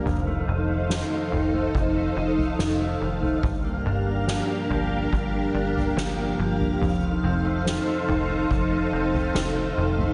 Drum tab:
SD |----o-------o---|----o-------o---|----o-------o---|
FT |o-----o----o---o|o-----o----o---o|o-----o----o---o|
BD |--------o-------|o-------o-------|--------o-------|